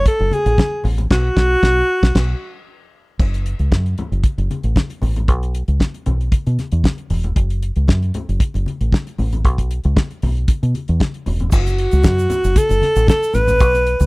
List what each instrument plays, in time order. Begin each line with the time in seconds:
0.06 alto saxophone A4, kick, closed hi-hat, muted conga
0.20 fingered electric bass F#1, muted conga
0.31 alto saxophone G#4, closed hi-hat, high conga
0.46 fingered electric bass A1, closed hi-hat
0.58 kick, snare, muted conga, high conga
0.84 fingered electric bass A1, open hi-hat, low conga
0.98 closed hi-hat, low conga
1.10 fingered electric bass B1, alto saxophone F#4, kick, snare, crash
1.37 fingered electric bass B1, kick, snare
1.63 fingered electric bass B1, kick, snare
2.03 fingered electric bass B1, kick, snare
2.15 fingered electric bass B1, kick, snare, crash
3.20 fingered electric bass F#1, kick, crash, muted conga
3.34 closed hi-hat
3.46 closed hi-hat
3.59 fingered electric bass C#2, closed hi-hat
3.72 fingered electric bass F#2, kick, snare, high conga
3.86 closed hi-hat
3.98 closed hi-hat, low conga
4.12 fingered electric bass F#1, closed hi-hat
4.24 kick, closed hi-hat, high conga
4.38 fingered electric bass F#1, closed hi-hat, muted conga
4.51 closed hi-hat, high conga
4.63 fingered electric bass A1, closed hi-hat
4.76 kick, snare, muted conga, high conga
4.90 closed hi-hat, muted conga
5.02 fingered electric bass A1, open hi-hat, low conga
5.16 closed hi-hat, low conga
5.28 fingered electric bass B1, kick, closed hi-hat
5.43 closed hi-hat
5.55 closed hi-hat
5.68 fingered electric bass C#2, closed hi-hat
5.80 kick, snare, muted conga, high conga
5.94 closed hi-hat, muted conga
6.06 fingered electric bass B1, closed hi-hat, low conga
6.21 closed hi-hat
6.32 muted fingered electric bass stroke, kick, closed hi-hat, muted conga, high conga
6.46 fingered electric bass B2, closed hi-hat, muted conga
6.59 snare, closed hi-hat, high conga
6.72 fingered electric bass E2, closed hi-hat
6.84 kick, snare, muted conga, high conga
6.98 closed hi-hat
7.10 fingered electric bass E1, open hi-hat, low conga
7.24 closed hi-hat, low conga
7.36 fingered electric bass F#1, kick, closed hi-hat
7.50 closed hi-hat
7.63 closed hi-hat
7.76 fingered electric bass C#2, closed hi-hat
7.88 fingered electric bass F#2, kick, snare, high conga
8.02 closed hi-hat, muted conga
8.14 closed hi-hat, low conga
8.29 fingered electric bass F#1, closed hi-hat
8.40 kick, closed hi-hat, muted conga, high conga
8.54 fingered electric bass F#1, closed hi-hat, muted conga
8.66 closed hi-hat, high conga
8.81 fingered electric bass A1, closed hi-hat
8.92 kick, snare, high conga
9.07 closed hi-hat, muted conga
9.18 fingered electric bass A1, open hi-hat, low conga
9.33 closed hi-hat, low conga
9.45 fingered electric bass B1, kick, closed hi-hat, muted conga
9.58 kick, closed hi-hat, muted conga
9.71 closed hi-hat
9.84 fingered electric bass C#2, closed hi-hat
9.97 kick, snare, muted conga, high conga
10.11 closed hi-hat, muted conga
10.22 fingered electric bass B1, open hi-hat, low conga
10.37 closed hi-hat
10.48 muted fingered electric bass stroke, kick, closed hi-hat, muted conga, high conga
10.63 fingered electric bass B2, closed hi-hat
10.74 closed hi-hat, high conga
10.88 fingered electric bass E2, closed hi-hat
11.00 kick, snare, muted conga, high conga
11.14 closed hi-hat
11.26 fingered electric bass E1, open hi-hat, low conga
11.40 closed hi-hat, low conga
11.52 fingered electric bass F#1, alto saxophone F#4, kick, crash, shaker
11.66 closed hi-hat, muted conga, shaker
11.78 closed hi-hat
11.91 fingered electric bass C#2, closed hi-hat, shaker
12.03 fingered electric bass F#2, kick, snare, muted conga, high conga, shaker
12.18 closed hi-hat, muted conga, shaker
12.30 closed hi-hat, low conga, shaker
12.44 fingered electric bass F#1, closed hi-hat, shaker
12.56 alto saxophone A4, kick, closed hi-hat, muted conga, high conga, shaker
12.69 fingered electric bass F#1, closed hi-hat, muted conga, shaker
12.82 snare, closed hi-hat, high conga
12.96 fingered electric bass A1, closed hi-hat, shaker
13.07 alto saxophone A4, kick, snare, high conga, shaker
13.22 closed hi-hat, shaker
13.34 fingered electric bass A1, alto saxophone B4, closed hi-hat, low conga, shaker
13.48 closed hi-hat, low conga, shaker
13.60 fingered electric bass B1, kick, closed hi-hat, shaker
13.74 closed hi-hat, muted conga, shaker
13.87 closed hi-hat
14.00 fingered electric bass C#2, closed hi-hat, shaker